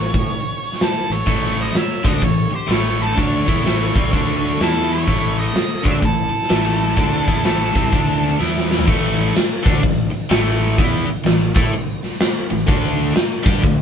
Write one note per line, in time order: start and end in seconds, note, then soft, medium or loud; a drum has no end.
0.00 0.12 A1 medium
0.00 0.84 C#5 medium
0.14 0.30 A2 medium
0.14 kick loud
0.14 closed hi-hat medium
0.32 muted fingered electric bass stroke soft
0.32 closed hi-hat medium
0.63 closed hi-hat medium
0.72 snare soft
0.81 1.09 E4 medium
0.81 1.12 A4 medium
0.81 snare medium
0.81 closed hi-hat medium
1.10 1.26 A1 medium
1.10 1.55 A4 medium
1.10 1.59 C#5 medium
1.10 closed hi-hat medium
1.26 1.71 A1 medium
1.26 1.73 A2 medium
1.26 1.74 E3 medium
1.26 1.74 A3 loud
1.26 kick medium
1.26 closed hi-hat medium
1.43 snare soft
1.57 1.75 C5 medium
1.57 closed hi-hat medium
1.61 1.77 D#5 medium
1.74 2.04 C#5 medium
1.74 2.04 E5 medium
1.74 muted overdriven electric guitar stroke soft
1.74 muted fingered electric bass stroke soft
1.74 snare medium
1.74 closed hi-hat medium
2.03 2.21 D2 medium
2.03 2.20 D3 medium
2.03 2.21 A3 medium
2.03 2.21 D4 medium
2.03 2.21 C5 medium
2.03 kick loud
2.03 closed hi-hat medium
2.08 2.24 D#5 medium
2.20 2.50 A1 medium
2.20 2.45 A2 medium
2.20 2.46 E3 medium
2.20 2.51 A4 medium
2.20 kick medium
2.20 closed hi-hat medium
2.24 2.51 C#5 medium
2.51 2.69 G4 medium
2.51 muted fingered electric bass stroke soft
2.51 muted overdriven electric guitar stroke medium
2.51 closed hi-hat medium
2.56 2.72 C5 medium
2.67 3.13 A1 medium
2.67 3.14 A2 medium
2.67 3.15 E3 medium
2.67 3.14 A3 loud
2.67 closed hi-hat medium
2.71 2.99 A4 medium
2.71 3.02 C#5 medium
2.71 snare medium
3.01 3.17 E4 medium
3.01 3.19 A4 medium
3.01 closed hi-hat medium
3.15 3.46 D2 medium
3.15 3.45 D3 medium
3.15 3.46 A3 medium
3.15 3.46 D4 medium
3.15 kick medium
3.15 closed hi-hat medium
3.19 4.57 A4 medium
3.19 4.65 C#5 medium
3.47 3.64 E2 medium
3.47 3.64 E3 medium
3.47 3.64 B3 medium
3.47 3.65 E4 medium
3.47 kick loud
3.47 closed hi-hat medium
3.65 3.93 A1 medium
3.65 3.94 A2 medium
3.65 3.94 E3 medium
3.65 3.95 A3 medium
3.65 snare medium
3.65 closed hi-hat medium
3.95 4.11 C2 medium
3.95 4.12 C3 medium
3.95 4.12 G3 loud
3.95 4.13 C4 loud
3.95 kick loud
3.95 closed hi-hat medium
4.12 4.57 D2 medium
4.12 4.59 D3 medium
4.12 4.60 A3 medium
4.12 4.60 D4 medium
4.12 kick loud
4.12 closed hi-hat medium
4.44 closed hi-hat medium
4.60 5.04 E2 medium
4.60 5.06 E3 medium
4.60 5.07 B3 medium
4.60 5.08 E4 loud
4.60 4.90 E4 medium
4.60 4.92 A4 medium
4.60 snare medium
4.60 closed hi-hat medium
4.90 5.38 C#5 medium
4.90 closed hi-hat medium
4.95 5.37 A4 medium
5.07 5.52 A1 medium
5.07 5.53 A2 medium
5.07 5.54 E3 medium
5.07 5.55 A3 medium
5.07 kick medium
5.07 closed hi-hat medium
5.38 5.84 A4 medium
5.38 5.87 D#5 medium
5.38 closed hi-hat medium
5.54 muted overdriven electric guitar stroke medium
5.54 muted fingered electric bass stroke soft
5.54 snare medium
5.54 closed hi-hat medium
5.83 6.02 D2 medium
5.83 6.01 D3 medium
5.83 6.01 A3 medium
5.83 6.02 D4 loud
5.83 kick loud
5.83 closed hi-hat medium
5.88 5.93 C#5 medium
5.88 5.93 E5 medium
6.01 6.31 A1 medium
6.01 6.26 A2 medium
6.01 6.26 E3 medium
6.01 8.37 E4 medium
6.01 kick medium
6.01 closed hi-hat medium
6.05 8.38 A4 medium
6.30 muted overdriven electric guitar stroke medium
6.30 muted fingered electric bass stroke soft
6.30 closed hi-hat medium
6.42 snare soft
6.49 6.95 A1 medium
6.49 6.96 A2 medium
6.49 6.96 E3 medium
6.49 6.96 A3 loud
6.49 snare loud
6.49 closed hi-hat medium
6.79 closed hi-hat soft
6.96 7.26 D2 medium
6.96 7.26 D3 medium
6.96 7.27 A3 medium
6.96 7.27 D4 medium
6.96 kick loud
6.96 closed hi-hat medium
7.27 7.44 E2 medium
7.27 7.44 E3 medium
7.27 7.45 B3 medium
7.27 7.44 E4 medium
7.27 kick loud
7.27 closed hi-hat medium
7.44 7.74 A1 medium
7.44 7.73 A2 medium
7.44 7.75 E3 medium
7.44 7.74 A3 medium
7.44 snare medium
7.44 closed hi-hat medium
7.74 7.91 C2 medium
7.74 7.90 C3 medium
7.74 7.91 G3 medium
7.74 7.92 C4 medium
7.74 kick medium
7.74 closed hi-hat medium
7.91 8.37 D2 medium
7.91 8.38 D3 medium
7.91 8.39 A3 loud
7.91 8.39 D4 loud
7.91 kick loud
7.91 closed hi-hat medium
8.23 closed hi-hat medium
8.39 8.85 E2 medium
8.39 8.85 E3 medium
8.39 8.86 B3 medium
8.39 8.87 E4 medium
8.39 snare soft
8.57 snare medium
8.71 snare medium
8.79 floor tom medium
8.86 9.32 A1 medium
8.86 9.33 A2 medium
8.86 9.34 E3 loud
8.86 9.34 A3 loud
8.86 kick loud
8.86 crash loud
9.18 open hi-hat medium
9.35 muted overdriven electric guitar stroke medium
9.35 muted fingered electric bass stroke soft
9.35 snare medium
9.35 open hi-hat medium
9.63 9.82 D2 loud
9.63 9.80 D3 medium
9.63 9.81 A3 medium
9.63 9.81 D4 loud
9.63 kick loud
9.63 open hi-hat medium
9.81 10.11 A1 medium
9.81 10.06 A2 medium
9.81 10.06 E3 medium
9.81 kick medium
9.81 open hi-hat medium
10.11 muted overdriven electric guitar stroke medium
10.11 muted fingered electric bass stroke soft
10.11 open hi-hat medium
10.29 10.74 A1 medium
10.29 10.77 A2 loud
10.29 10.77 E3 loud
10.29 10.77 A3 loud
10.29 snare loud
10.29 open hi-hat medium
10.61 open hi-hat medium
10.78 11.06 E2 medium
10.78 11.07 E3 medium
10.78 11.07 B3 loud
10.78 11.08 E4 medium
10.78 kick loud
10.78 open hi-hat medium
11.07 muted overdriven electric guitar stroke medium
11.07 muted fingered electric bass stroke soft
11.07 open hi-hat medium
11.24 11.53 A1 medium
11.24 11.49 A2 medium
11.24 11.48 E3 medium
11.24 snare medium
11.24 open hi-hat medium
11.55 11.72 A2 loud
11.55 11.72 A3 medium
11.55 11.72 E4 loud
11.55 11.72 A4 medium
11.55 kick loud
11.55 open hi-hat medium
11.73 muted overdriven electric guitar stroke medium
11.73 muted fingered electric bass stroke soft
11.73 open hi-hat medium
12.03 snare soft
12.03 open hi-hat medium
12.20 snare loud
12.20 open hi-hat medium
12.50 12.67 A1 medium
12.50 12.64 A2 medium
12.50 12.64 E3 medium
12.50 open hi-hat medium
12.67 13.12 D2 medium
12.67 13.14 D3 medium
12.67 13.14 A3 medium
12.67 13.14 D4 loud
12.67 kick loud
12.67 open hi-hat medium
12.98 open hi-hat medium
13.15 muted overdriven electric guitar stroke medium
13.15 muted fingered electric bass stroke soft
13.15 snare medium
13.15 open hi-hat medium
13.31 snare soft
13.43 13.61 G2 loud
13.43 13.61 G3 loud
13.43 13.61 D4 loud
13.43 13.62 G4 loud
13.43 kick loud
13.43 open hi-hat medium
13.62 13.82 D2 medium
13.62 13.82 D3 medium
13.62 13.82 A3 medium
13.62 kick loud
13.62 open hi-hat medium